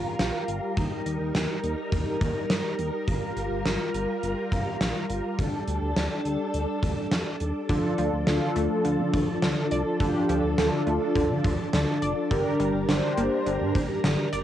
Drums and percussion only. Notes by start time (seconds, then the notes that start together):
0.19 snare, closed hi-hat
0.48 closed hi-hat
0.77 kick, closed hi-hat
1.06 closed hi-hat
1.35 snare, closed hi-hat
1.64 closed hi-hat
1.92 kick, closed hi-hat
2.21 kick, closed hi-hat
2.50 snare, closed hi-hat
2.79 closed hi-hat
3.08 kick, closed hi-hat
3.37 closed hi-hat
3.66 snare, closed hi-hat
3.94 closed hi-hat
4.23 closed hi-hat
4.52 kick, closed hi-hat
4.81 snare, closed hi-hat
5.10 closed hi-hat
5.39 kick, closed hi-hat
5.68 closed hi-hat
5.96 snare, closed hi-hat
6.25 closed hi-hat
6.54 closed hi-hat
6.83 kick, closed hi-hat
7.12 snare, closed hi-hat
7.40 closed hi-hat
7.69 kick, closed hi-hat
7.98 closed hi-hat
8.27 snare, closed hi-hat
8.56 closed hi-hat
8.85 closed hi-hat
9.14 kick, closed hi-hat
9.42 snare, closed hi-hat
9.71 closed hi-hat
10.00 kick, closed hi-hat
10.29 closed hi-hat
10.58 snare, closed hi-hat
10.87 closed hi-hat
11.15 kick, closed hi-hat
11.44 kick, closed hi-hat
11.73 snare, closed hi-hat
12.02 closed hi-hat
12.31 kick, closed hi-hat
12.60 closed hi-hat
12.89 snare, closed hi-hat
13.17 closed hi-hat
13.46 closed hi-hat
13.75 kick, closed hi-hat
14.04 snare, closed hi-hat
14.33 closed hi-hat